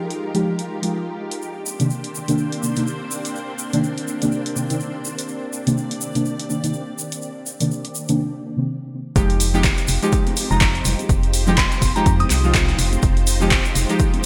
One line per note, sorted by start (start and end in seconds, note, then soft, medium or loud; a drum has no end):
0.00 1.38 G#3 medium
0.00 1.38 D#4 medium
0.00 1.38 F4 medium
0.00 8.15 G4 medium
0.00 1.38 A#4 medium
0.10 closed hi-hat soft
0.34 0.66 F3 loud
0.34 0.67 G#3 medium
0.34 0.67 D#4 medium
0.34 0.67 G4 loud
0.34 closed hi-hat medium
0.59 closed hi-hat soft
0.82 1.40 F3 medium
0.82 1.40 G#3 medium
0.82 1.41 D#4 medium
0.82 1.41 F4 medium
0.82 closed hi-hat medium
1.31 closed hi-hat medium
1.42 8.15 A#3 medium
1.42 8.15 C4 medium
1.42 8.15 D4 medium
1.42 5.25 C5 medium
1.42 shaker soft
1.66 shaker medium
1.79 1.90 C3 loud
1.79 1.90 D#3 medium
1.79 1.90 A#3 medium
1.79 1.90 D4 loud
1.79 closed hi-hat medium
1.79 shaker soft
1.90 shaker soft
2.04 closed hi-hat soft
2.15 shaker medium
2.28 2.60 C3 loud
2.28 2.60 D#3 medium
2.28 2.60 A#3 medium
2.28 2.60 D4 loud
2.28 closed hi-hat medium
2.28 shaker soft
2.38 shaker soft
2.52 closed hi-hat soft
2.62 2.74 C3 medium
2.62 2.74 D#3 medium
2.62 2.75 A#3 medium
2.62 2.75 D4 medium
2.62 shaker medium
2.76 2.86 C3 medium
2.76 2.87 D#3 medium
2.76 2.87 A#3 medium
2.76 2.87 D#4 medium
2.76 closed hi-hat medium
2.76 shaker soft
2.87 shaker soft
3.11 shaker medium
3.25 closed hi-hat medium
3.25 shaker soft
3.35 shaker soft
3.59 shaker medium
3.73 3.83 C3 loud
3.73 3.83 D#3 medium
3.73 3.84 A#3 medium
3.73 3.84 D4 loud
3.73 closed hi-hat medium
3.73 shaker soft
3.84 shaker soft
3.98 closed hi-hat soft
4.08 shaker medium
4.21 4.53 C3 loud
4.21 4.54 D#3 medium
4.21 4.54 A#3 medium
4.21 4.54 D4 loud
4.21 closed hi-hat medium
4.21 shaker soft
4.32 shaker soft
4.46 closed hi-hat medium
4.56 4.68 C3 medium
4.56 4.68 D#3 medium
4.56 4.68 A#3 medium
4.56 4.68 D4 medium
4.56 shaker medium
4.70 4.80 C3 medium
4.70 4.80 D#3 medium
4.70 4.80 A#3 medium
4.70 4.80 D#4 medium
4.70 closed hi-hat medium
4.70 shaker medium
4.80 shaker soft
5.05 shaker medium
5.19 closed hi-hat medium
5.19 shaker soft
5.28 8.16 D5 medium
5.28 shaker soft
5.53 shaker medium
5.67 5.77 C3 loud
5.67 5.77 D#3 medium
5.67 5.77 A#3 medium
5.67 5.77 D4 loud
5.67 closed hi-hat medium
5.67 shaker soft
5.77 shaker soft
5.91 closed hi-hat medium
6.01 shaker medium
6.15 6.47 C3 medium
6.15 6.47 D#3 medium
6.15 6.47 A#3 medium
6.15 6.47 D4 loud
6.15 closed hi-hat medium
6.15 shaker soft
6.25 shaker soft
6.40 closed hi-hat medium
6.49 6.61 C3 medium
6.49 6.62 D#3 medium
6.49 6.62 A#3 medium
6.49 6.62 D4 medium
6.49 shaker medium
6.63 6.74 C3 medium
6.63 6.74 D#3 medium
6.63 6.74 A#3 medium
6.63 6.74 D#4 medium
6.63 closed hi-hat medium
6.63 shaker soft
6.73 shaker soft
6.98 shaker medium
7.12 closed hi-hat medium
7.12 shaker medium
7.22 shaker soft
7.46 shaker medium
7.60 7.70 C3 loud
7.60 7.71 D#3 medium
7.60 7.71 A#3 medium
7.60 7.71 D4 loud
7.60 closed hi-hat medium
7.60 shaker soft
7.71 shaker soft
7.85 closed hi-hat medium
7.95 shaker medium
8.08 8.41 C3 loud
8.08 8.41 D#3 medium
8.08 8.41 A#3 medium
8.08 8.41 D4 loud
8.08 closed hi-hat medium
8.08 shaker medium
8.56 9.14 C3 medium
8.56 9.14 D#3 medium
8.56 9.15 A#3 medium
8.56 9.15 C4 medium
9.15 9.72 F1 loud
9.15 9.48 F3 loud
9.15 9.48 G#3 medium
9.15 14.26 G#3 medium
9.15 14.26 D#4 medium
9.15 9.49 D#4 medium
9.15 14.26 F4 medium
9.15 12.99 G4 medium
9.15 9.49 G4 loud
9.15 14.26 C5 medium
9.15 kick loud
9.15 closed hi-hat medium
9.15 shaker medium
9.30 closed hi-hat medium
9.40 closed hi-hat medium
9.40 open hi-hat loud
9.40 shaker loud
9.54 9.64 F3 loud
9.54 9.64 G#3 medium
9.54 9.64 D#4 medium
9.54 9.64 G4 loud
9.54 high conga medium
9.54 shaker soft
9.64 kick loud
9.64 snare loud
9.64 clap loud
9.64 closed hi-hat medium
9.64 high bongo soft
9.64 shaker medium
9.78 closed hi-hat medium
9.78 shaker soft
9.87 9.98 F1 loud
9.87 closed hi-hat medium
9.87 open hi-hat loud
9.87 shaker medium
10.02 10.34 F3 loud
10.02 10.34 G#3 loud
10.02 10.34 D#4 medium
10.02 10.35 G4 loud
10.02 closed hi-hat soft
10.02 shaker soft
10.12 kick loud
10.12 closed hi-hat medium
10.12 shaker medium
10.27 closed hi-hat medium
10.27 high bongo medium
10.27 high conga loud
10.36 closed hi-hat medium
10.36 open hi-hat loud
10.36 shaker loud
10.50 10.81 F1 medium
10.50 11.44 F3 medium
10.50 11.44 G#3 medium
10.50 11.44 D#4 medium
10.50 11.45 F4 medium
10.50 10.57 A#5 medium
10.50 shaker soft
10.61 10.70 A#5 medium
10.61 kick loud
10.61 snare loud
10.61 clap loud
10.61 closed hi-hat medium
10.61 shaker soft
10.75 closed hi-hat medium
10.85 10.95 F1 medium
10.85 closed hi-hat medium
10.85 open hi-hat loud
10.85 low conga medium
10.85 shaker medium
10.99 closed hi-hat soft
10.99 high conga medium
10.99 shaker soft
11.09 11.65 F1 loud
11.09 kick loud
11.09 closed hi-hat medium
11.09 shaker medium
11.23 closed hi-hat medium
11.34 closed hi-hat medium
11.34 open hi-hat loud
11.34 shaker loud
11.47 11.57 F3 loud
11.47 11.58 G#3 medium
11.47 11.58 D#4 loud
11.47 11.58 G4 loud
11.47 closed hi-hat soft
11.47 high conga loud
11.47 low conga loud
11.47 shaker soft
11.57 11.79 C6 loud
11.57 kick loud
11.57 snare loud
11.57 clap loud
11.57 closed hi-hat medium
11.57 high bongo soft
11.57 shaker soft
11.71 snare medium
11.71 closed hi-hat medium
11.71 shaker soft
11.82 11.92 F1 loud
11.82 kick medium
11.82 open hi-hat loud
11.82 open hi-hat medium
11.82 high conga medium
11.82 shaker medium
11.96 12.28 F3 loud
11.96 12.28 G#3 loud
11.96 12.28 D#4 loud
11.96 12.28 G4 loud
11.96 12.17 A#5 medium
11.96 closed hi-hat soft
11.96 shaker soft
12.06 12.25 F2 medium
12.06 kick loud
12.06 closed hi-hat medium
12.06 shaker medium
12.19 12.69 D#6 loud
12.19 closed hi-hat medium
12.19 high bongo medium
12.19 high conga loud
12.30 12.74 C2 medium
12.30 clap soft
12.30 closed hi-hat medium
12.30 open hi-hat loud
12.30 shaker loud
12.43 13.37 F3 medium
12.43 13.38 G#3 medium
12.43 13.38 D#4 medium
12.43 13.38 F4 medium
12.43 shaker soft
12.54 kick loud
12.54 snare loud
12.54 clap loud
12.54 closed hi-hat medium
12.54 high conga medium
12.54 shaker soft
12.68 snare medium
12.68 closed hi-hat medium
12.68 high bongo soft
12.79 12.97 F1 loud
12.79 closed hi-hat medium
12.79 open hi-hat loud
12.79 shaker medium
12.92 closed hi-hat soft
12.92 high bongo soft
12.92 high conga medium
12.92 shaker soft
13.02 13.59 F1 loud
13.02 14.26 G4 medium
13.02 kick loud
13.02 closed hi-hat medium
13.02 shaker medium
13.17 closed hi-hat medium
13.27 closed hi-hat medium
13.27 open hi-hat loud
13.27 shaker loud
13.40 13.51 F3 loud
13.40 13.51 G#3 medium
13.40 13.51 D#4 medium
13.40 13.51 G4 loud
13.40 high conga loud
13.40 shaker soft
13.51 kick loud
13.51 snare loud
13.51 clap loud
13.51 closed hi-hat medium
13.51 high bongo soft
13.51 shaker medium
13.65 closed hi-hat medium
13.65 shaker soft
13.75 13.86 F1 loud
13.75 closed hi-hat medium
13.75 open hi-hat loud
13.75 shaker loud
13.89 14.21 F3 loud
13.89 14.21 G#3 medium
13.89 14.22 D#4 medium
13.89 14.22 G4 loud
13.89 closed hi-hat soft
13.89 shaker soft
13.99 kick loud
13.99 closed hi-hat medium
13.99 shaker medium
14.14 closed hi-hat medium
14.14 high bongo soft
14.14 high conga loud